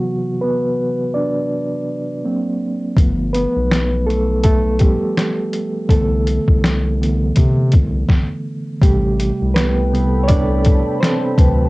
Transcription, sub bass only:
X:1
M:4/4
L:1/16
Q:"Swing 16ths" 1/4=82
K:Am
V:1 name="Sub bass" clef=bass
z16 | G,,,3 B,,,8 z4 z | C,,3 C,,4- C,, C,2 C,,2 z4 | A,,,3 C,,8 z3 D,,2 |]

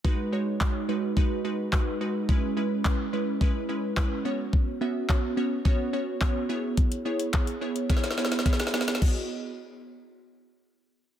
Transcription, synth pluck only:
X:1
M:4/4
L:1/8
Q:1/4=107
K:G#m
V:1 name="Synth pluck"
[G,DFB] [G,DFc] [DFc] [G,DFB] [G,DFB] [G,DFB] [G,DFB] [G,DFB] | [G,CEB] [G,CEB] [G,CEB] [G,CEB] [G,CEB] [G,CEB] [G,CEB] [B,CFc]- | [B,CFc] [B,CFe] [B,CFc] [B,CFc] [B,CFc] [B,CFc] [B,CFc] [B,EGc]- | [B,EGc] [B,EGc] [B,EGc] [B,EGc] [B,EGc] [B,EGc] [B,EGc] [B,EGc] |
[B,FGd] z6 z |]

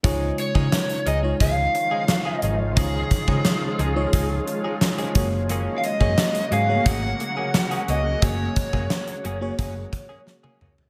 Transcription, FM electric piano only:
X:1
M:4/4
L:1/16
Q:1/4=88
K:C#mix
V:1 name="FM electric piano"
[G,DEc]2 z [G,DEc]3 z [G,DEc]6 z3 | [G,DEc]2 z [G,DEc]3 z [G,DEc]6 z [A,FGc]2- | [A,FGc]2 z [A,FGc]3 z [=A,^A,FGc]6 z3 | [A,FGc]2 z [A,FGc]3 z [A,FGc]6 z3 |]
V:2 name="FM electric piano" clef=bass
C,6 z8 z2 | C,6 z8 z2 | z16 | z16 |]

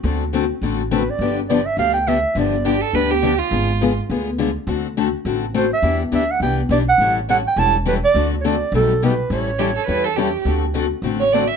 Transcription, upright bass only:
X:1
M:4/4
L:1/8
Q:"Swing" 1/4=207
K:G
V:1 name="Upright bass" clef=bass
D,,4 A,,,4 | G,,,4 D,,4 | G,,,4 D,,4 | ^G,,,4 D,,4 |
D,,4 A,,,4 | E,,2 D,,2 C,,2 B,,,2 | A,,,4 E,,,4 | D,,4 B,,,4 |
A,,,4 E,,4 | D,,4 A,,,4 |]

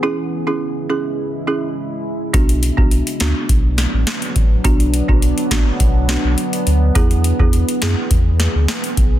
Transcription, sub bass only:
X:1
M:4/4
L:1/16
Q:1/4=104
K:Bdor
V:1 name="Sub bass" clef=bass
z16 | B,,,3 B,,,2 z D,, z B,,,3 A,,, z2 A,,,2 | B,,,3 B,,,2 z A,,, z B,,,3 B,,, z2 D,,2 | E,,3 E,,2 z F,, z E,,3 D,, z2 B,,,2 |]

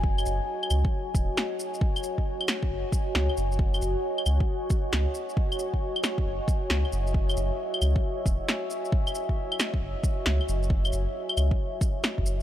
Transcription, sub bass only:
X:1
M:4/4
L:1/16
Q:"Swing 16ths" 1/4=135
K:F#dor
V:1 name="Sub bass" clef=bass
F,,,2 F,,, z3 C,, z3 D,,, z4 z | z8 F,,, z3 C,, z F,,,2 | F,,,2 F,,, z3 C,, z4 z C,, z3 | z8 F,,, z3 C,, z F,,,2 |
F,,,2 F,,, z3 C,, z3 E,,, z4 z | z8 F,,, z3 C,, z F,,,2 | F,,,2 F,,, z3 C,, z6 F,,,3 |]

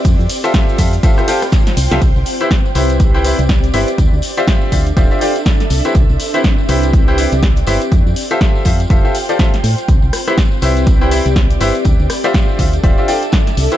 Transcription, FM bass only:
X:1
M:4/4
L:1/16
Q:"Swing 16ths" 1/4=122
K:C
V:1 name="FM bass" clef=bass
F,, F,, z4 F,,2 z6 C,, C,, | z C,, z4 C,,4- C,, C,,3 G,,, z | D,, D,, z4 D,,2 D,,, z4 z C,, z | C,, C,, z4 C,,4- C,, C,,3 G,,, z |
F,, F,, z4 F,,2 F,,, z4 z A,, z | C,, C,, z4 C,,4- C,, C,,3 G,,, z | D,, D,, z4 D,,2 D,,, z4 z C,, z |]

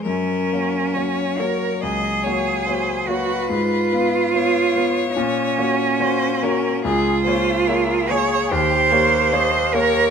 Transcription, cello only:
X:1
M:4/4
L:1/8
Q:1/4=72
K:Gblyd
V:1 name="Cello"
D3 B A3 G | F4 D4 | [K:Bbdor] F3 d c3 B |]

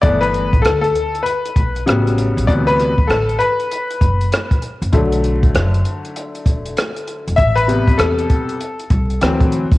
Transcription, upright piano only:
X:1
M:4/4
L:1/16
Q:"Swing 16ths" 1/4=98
K:G
V:1 name="Upright piano"
d B3 A A3 B4 z4 | d B3 A2 B8 z2 | z16 | e B3 A8- A2 z2 |]
V:2 name="Upright piano" clef=bass
[E,A,B,]2 z8 z2 [^C,F,G,B,]4 | [C,E,F,B,]2 z12 z2 | [D,F,A,]16 | z2 [C,G,B,]6 z4 [E,F,C]2 z2 |]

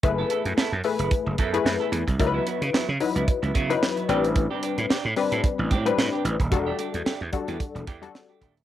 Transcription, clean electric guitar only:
X:1
M:4/4
L:1/16
Q:"Swing 16ths" 1/4=111
K:Alyd
V:1 name="Clean electric guitar"
z [B,EA] [B,EA] z [B,EA] z2 [B,EB] z2 [B,EA] z2 [B,EA] z2 | z [F,B,E] [F,B,E] z [F,B,E] z2 [F,B,E] z [F,B,E] [F,B,E] z2 [F,B,E] [=C=D=G] z | z [=C=D=G] [CDG] z [CDG] z2 [CDA] z2 [CDG] z2 [CDG] z2 | z [A,=D=G] [A,DG] z [A,DG] z2 [A,DG] z2 [A,DG] z2 [A,DG] [A,DG] z |]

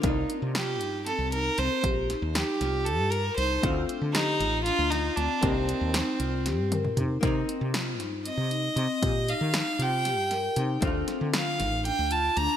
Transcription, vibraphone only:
X:1
M:7/8
L:1/8
Q:1/4=117
K:Cdor
V:1 name="Vibraphone"
E C F E C E C | G E E F G B E | F D G F D F C | G E E F G B E |
E C F E C E C | G E E F G B E | D C F E D F D |]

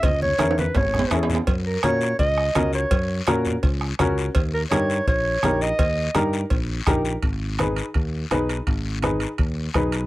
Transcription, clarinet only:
X:1
M:4/4
L:1/8
Q:1/4=167
K:G#m
V:1 name="Clarinet"
d c2 B c3 z | z A c2 d3 c- | c2 z6 | z A c2 c3 d- |
d2 z6 | z8 | z8 |]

